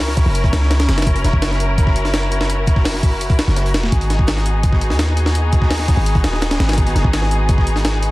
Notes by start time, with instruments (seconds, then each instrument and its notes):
Already playing: 808-style bass C#2, string section C#4 E4 F#4 A#4
0.08 snare
0.17 kick, snare, closed hi-hat, shaker
0.26 808-style bass F#1
0.34 closed hi-hat, shaker
0.44 kick, closed hi-hat
0.53 808-style bass C#2, snare, closed hi-hat, shaker
0.62 snare
0.70 snare, closed hi-hat, shaker
0.79 snare, closed hi-hat
0.88 808-style bass F#1, snare, closed hi-hat, shaker
0.98 snare, closed hi-hat
1.02 snare, closed hi-hat
1.06 kick, closed hi-hat, shaker
1.16 closed hi-hat
1.24 808-style bass E1, snare, closed hi-hat, shaker
1.33 808-style bass F#1, kick
1.42 snare, closed hi-hat, shaker
1.51 snare
1.60 closed hi-hat, shaker
1.78 kick, closed hi-hat, shaker
1.87 kick, snare
1.96 closed hi-hat, shaker
2.05 snare, closed hi-hat
2.14 snare, closed hi-hat, shaker
2.31 closed hi-hat, shaker
2.41 snare
2.50 closed hi-hat, shaker
2.67 kick, closed hi-hat, shaker
2.76 kick, snare
2.85 snare, open hi-hat
2.93 snare
3.03 kick, closed hi-hat, shaker
3.21 closed hi-hat, shaker
3.30 kick, closed hi-hat
3.39 snare, closed hi-hat, shaker
3.48 808-style bass F#1, snare
3.56 snare, closed hi-hat, shaker
3.66 closed hi-hat
3.74 808-style bass E1, snare, closed hi-hat, shaker
3.83 snare
3.92 808-style bass G#1, string section B3 D#4 G#4, kick, closed hi-hat, shaker
4.01 closed hi-hat
4.10 snare, closed hi-hat, shaker
4.19 kick
4.27 snare, closed hi-hat, shaker
4.37 snare
4.45 closed hi-hat, shaker
4.63 kick, closed hi-hat, shaker
4.72 kick, snare
4.81 closed hi-hat, shaker
4.90 808-style bass D#2, snare, closed hi-hat
4.99 snare, closed hi-hat, shaker
5.17 closed hi-hat, shaker
5.26 snare
5.35 closed hi-hat, shaker
5.52 kick, closed hi-hat, shaker
5.62 kick, snare
5.71 snare, open hi-hat
5.79 snare
5.88 kick, snare, closed hi-hat, shaker
5.97 808-style bass G#1
6.06 closed hi-hat, shaker
6.15 kick, closed hi-hat
6.24 808-style bass D#1, snare, closed hi-hat, shaker
6.33 snare
6.41 snare, closed hi-hat, shaker
6.51 snare, closed hi-hat
6.60 808-style bass G#1, snare, closed hi-hat, shaker
6.69 snare, closed hi-hat
6.73 snare, closed hi-hat, shaker
6.78 kick, closed hi-hat
6.86 closed hi-hat
6.95 808-style bass F#1, snare, closed hi-hat, shaker
7.04 808-style bass G#1, kick
7.13 snare, closed hi-hat, shaker
7.22 snare
7.31 closed hi-hat, shaker
7.49 kick, closed hi-hat, shaker
7.58 kick, snare
7.67 closed hi-hat, shaker
7.76 snare, closed hi-hat
7.84 snare, closed hi-hat, shaker
8.02 closed hi-hat, shaker